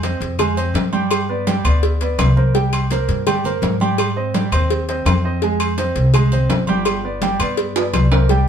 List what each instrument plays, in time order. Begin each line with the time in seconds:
Already playing: upright bass F2
0.03 grand piano C4 C5 D#5, cowbell, high conga, low timbale, low agogo
0.20 upright bass F2, cowbell, high conga
0.39 grand piano G#3 G#4 G#5, cowbell, high conga, low conga, low agogo, claves
0.57 grand piano C4 C5 D#5, high conga, low agogo
0.74 upright bass G2, cowbell, high conga, low timbale
0.93 grand piano G3 G4 G5, high conga, low agogo
1.11 cowbell, high conga, low agogo, claves
1.29 grand piano B3 B4 D5, high conga
1.47 grand piano G3 G4 G5, cowbell, high conga, low timbale, low agogo
1.64 upright bass D2, grand piano B3 B4 D5, cowbell, low agogo, claves
1.83 cowbell, high conga
2.01 grand piano B3 B4 D5, cowbell, high conga
2.18 upright bass C2, cowbell, high conga, low timbale, low agogo, claves
2.37 grand piano A#3 A#4 C5, high conga
2.54 grand piano G3 G4 G5, cowbell
2.73 cowbell, high conga, low agogo, claves
2.91 grand piano A#3 A#4 C5, cowbell, high conga, low timbale, low agogo
3.08 upright bass G2, cowbell, high conga
3.27 grand piano G3 G4 G5, cowbell, high conga, low conga, low agogo, claves
3.44 grand piano A#3 A#4 C5, high conga, low conga, low agogo
3.62 upright bass G#2, cowbell, high conga, low timbale
3.80 grand piano G3 G4 G5, high conga, low agogo
3.98 cowbell, low agogo, claves
4.16 grand piano C4 C5 D#5, high conga
4.34 grand piano G3 G4 G5, cowbell, high conga, low timbale, low agogo
4.52 upright bass D#2, grand piano C4 C5 D#5, cowbell, low agogo, claves
4.70 cowbell, high conga
4.89 grand piano C4 C5 D#5, cowbell, high conga
5.05 upright bass F2, cowbell, high conga, low timbale, low agogo, claves
5.24 grand piano C4 C5 D#5
5.42 grand piano G#3 G#4 G#5, cowbell, high conga
5.60 cowbell, high conga, low agogo, claves
5.78 grand piano C4 C5 D#5, cowbell, high conga, low timbale, low agogo
5.95 upright bass C2, cowbell, high conga
6.14 grand piano G#3 G#4 G#5, cowbell, high conga, low conga, low agogo, claves
6.32 grand piano C4 C5 D#5, high conga, low conga, low agogo
6.49 upright bass G1, cowbell, high conga, low timbale
6.67 grand piano G3 G4 G5, high conga, low agogo
6.85 cowbell, high conga, low agogo, claves
7.04 grand piano B3 B4 D5, high conga
7.22 grand piano G3 G4 G5, cowbell, high conga, low timbale, low agogo
7.39 upright bass G2, grand piano B3 B4 D5, cowbell, low agogo, claves
7.57 cowbell, high conga
7.76 grand piano B3 B4 D5, cowbell, high conga, high timbale
7.93 upright bass C2, cowbell, high conga, high timbale, low agogo, claves
8.12 grand piano A#3 A#4 C5, high conga, low timbale
8.29 grand piano G3 G4 G5, cowbell